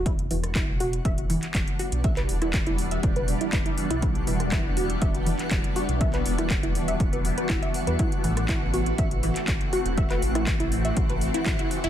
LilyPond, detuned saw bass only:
\new Staff \with { instrumentName = "Detuned saw bass" } { \clef bass \time 4/4 \key e \minor \tempo 4 = 121 e,,8 e,,8. e,,8. e,,8. r16 e,,16 r8 b,,16~ | b,,8 e,,8. e,,8. e,,8. r16 e,,16 r8 b,,16~ | b,,8 e,,8. e,,8. e,,8. r16 e,,16 r8 b,,16~ | b,,8 e,,8. e,,8. e,,8. r16 e,,16 r8 e,16 |
r8 a,,8. a,,8. a,,8. r16 a,,16 r8 e,,16~ | e,,8 a,,8. a,,8. a,,8. r16 a,,16 r8 e,,16 | }